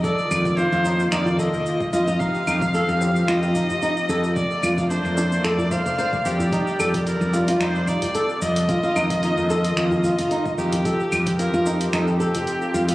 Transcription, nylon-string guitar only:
X:1
M:4/4
L:1/16
Q:"Swing 16ths" 1/4=111
K:Fmix
V:1 name="Nylon-string guitar"
A z3 F F E z E z A z3 F F | E z E z A z3 F F E z E z A z | z2 F F D z D z A z c c c z c z | E z A z3 F F E z E z A z3 |
F F E z E z A z3 F F E z E z | A z3 F F E z E z A z3 F F |]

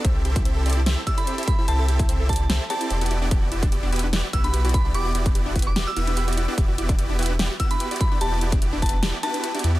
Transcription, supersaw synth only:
X:1
M:4/4
L:1/16
Q:"Swing 16ths" 1/4=147
K:Em
V:1 name="Supersaw synth"
[CEGAe]2 [CEGAe]2 [CEGAe]2 [CEGAd] z [CEGAe] z [EGd]3 [CEGAe]2 [CEGAe] | [CEGAe]2 [CEGAe]2 [CEGAe]2 [CEGAd] z [CEGAe] z [CEGAd]3 [B,EFGd]2 [B,EFGd] | [FGd]2 [B,EFGd]2 [B,EFGd]2 [B,EFGB] z [B,EFGd] z [B,EFGB]3 [B,EFGd]2 [B,EFGd] | [B,EFGd]2 [B,EFGd]2 [B,EFGd]2 [B,FGB] z [B,EFGd] z [B,EFGB]3 [B,EFGd]2 [B,EFGd] |
[B,EFGd]2 [B,EFGd]2 [B,EFGd]2 [B,EFGB] z [B,EFGd] z [B,EFGB]3 [B,EFGd]2 [B,EFGd] | [B,EFGd]2 [B,EFGd]2 [B,EFGd]2 [B,EFGB] z [B,EFGd] z [B,EFGB]3 [B,EFGd]2 [B,EFGd] |]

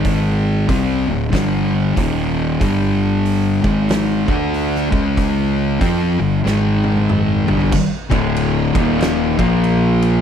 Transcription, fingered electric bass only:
X:1
M:4/4
L:1/8
Q:"Swing" 1/4=94
K:Gdor
V:1 name="Fingered electric bass" clef=bass
^G,,,2 C,, D,,, =G,,,2 _E,,,2 | G,,,3 ^G,,,2 D,,2 ^C,,- | ^C,,2 F,, G,,, ^G,,,3 =G,,, | z D,,,2 _E,,,2 B,,,3 |]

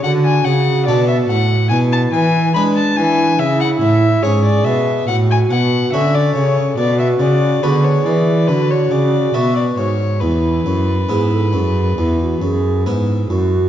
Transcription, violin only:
X:1
M:4/4
L:1/16
Q:1/4=70
K:Emix
V:1 name="Violin"
f g f2 d e f2 g a g2 b a g2 | e f e2 c d e2 f g f2 e d c2 | d e d2 B c d2 B c d2 e d c2 | B12 z4 |]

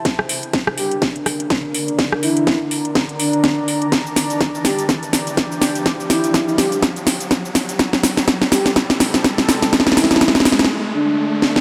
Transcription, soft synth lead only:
X:1
M:4/4
L:1/16
Q:"Swing 16ths" 1/4=124
K:Bblyd
V:1 name="Soft synth lead"
z6 G z8 z | z2 E3 z4 z D6 | z6 G z8 z | z2 E3 E G G z8 |
z6 G z8 z | z2 E3 z4 z D6 |]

